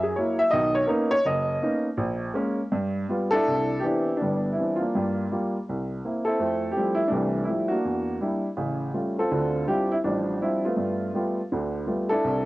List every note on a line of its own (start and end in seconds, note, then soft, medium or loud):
0.00 0.11 F#2 medium
0.00 0.16 G#4 medium
0.16 0.41 F#3 medium
0.16 0.42 A#3 medium
0.16 0.41 E4 medium
0.16 0.38 C#5 medium
0.39 0.52 E5 loud
0.51 0.84 B1 medium
0.51 0.84 D#3 medium
0.51 0.74 D#5 loud
0.75 0.88 C#5 loud
0.87 1.12 A#3 medium
0.87 1.12 B3 medium
0.87 1.13 C#4 medium
0.87 1.13 D#4 medium
0.87 1.10 A#4 medium
1.11 1.24 C#5 loud
1.25 1.56 F#1 medium
1.25 1.81 D#5 medium
1.62 1.86 A#3 medium
1.62 1.86 B3 soft
1.62 1.87 C#4 medium
1.62 1.87 D#4 medium
1.97 2.29 A#1 medium
2.34 2.59 G#3 medium
2.34 2.59 A#3 medium
2.34 2.59 C#4 medium
2.72 3.04 G2 medium
3.09 3.34 G3 medium
3.09 3.35 B3 medium
3.09 3.35 F4 medium
3.31 3.84 D4 medium
3.31 3.82 E4 medium
3.31 3.84 A4 loud
3.48 3.79 C2 medium
3.80 4.09 E3 medium
3.80 4.21 B3 medium
3.80 4.20 G4 medium
3.84 4.09 C4 soft
3.84 4.09 D4 medium
3.84 4.51 E4 medium
4.17 4.53 D4 medium
4.22 4.53 G1 medium
4.22 4.90 G3 medium
4.22 4.58 B3 medium
4.53 4.79 E4 medium
4.58 4.82 E3 soft
4.58 4.83 B3 soft
4.58 4.83 C4 soft
4.58 4.79 D4 soft
4.76 5.24 F4 medium
4.80 5.30 A#3 medium
4.80 5.49 D4 medium
4.95 5.26 G2 medium
4.95 5.26 G3 medium
5.32 5.56 G3 medium
5.32 5.56 A#3 soft
5.32 5.56 F4 medium
5.69 5.99 C2 medium
6.05 6.28 A#3 soft
6.05 6.25 C4 soft
6.05 6.25 E4 soft
6.25 6.95 C4 medium
6.25 6.77 E4 medium
6.25 6.76 A4 medium
6.39 6.71 F2 medium
6.39 6.71 A3 medium
6.72 6.98 G4 medium
6.77 7.01 F3 medium
6.77 7.01 G3 medium
6.77 7.01 A3 medium
6.77 6.93 E4 medium
6.95 7.10 E4 loud
7.08 7.43 C2 medium
7.08 7.48 G3 medium
7.08 7.47 A3 medium
7.08 7.47 D4 medium
7.12 7.43 E3 medium
7.44 7.49 E4 medium
7.49 7.73 F3 soft
7.49 7.73 G3 soft
7.49 7.73 A3 soft
7.49 7.74 E4 soft
7.68 8.39 A#3 medium
7.68 8.21 D4 soft
7.68 8.16 F#4 medium
7.85 8.16 E2 medium
8.21 8.45 G3 medium
8.21 8.46 D4 soft
8.21 8.46 E4 medium
8.57 8.89 A1 medium
8.57 8.89 C#3 medium
8.94 9.19 G3 soft
8.94 9.19 A3 soft
8.94 9.19 C#4 soft
8.94 9.18 F4 soft
9.19 9.67 C4 medium
9.19 9.68 F4 medium
9.19 9.65 A4 medium
9.32 9.63 D2 medium
9.32 9.63 D3 medium
9.68 9.93 G3 soft
9.68 9.93 C4 soft
9.68 9.92 D4 soft
9.68 9.90 E4 soft
9.68 9.93 F4 medium
9.68 9.92 G4 medium
9.92 9.97 E4 medium
10.04 10.36 A1 medium
10.04 10.74 F3 medium
10.04 10.41 G3 medium
10.04 10.38 D4 medium
10.42 10.66 G3 soft
10.42 10.66 C4 soft
10.42 10.67 D4 soft
10.42 10.63 E4 medium
10.42 10.63 F4 medium
10.65 11.13 A3 medium
10.65 11.13 B3 medium
10.65 11.11 F4 medium
10.77 11.08 G2 medium
11.14 11.38 G3 medium
11.14 11.38 A3 medium
11.14 11.39 B3 medium
11.14 11.39 F4 medium
11.52 11.82 D2 medium
11.52 11.82 D3 medium
11.87 12.11 G3 soft
11.87 12.11 A3 soft
11.87 12.11 B3 soft
11.87 12.11 F4 medium
12.09 12.45 D4 medium
12.09 12.45 E4 medium
12.09 12.43 A4 loud
12.24 12.45 C2 medium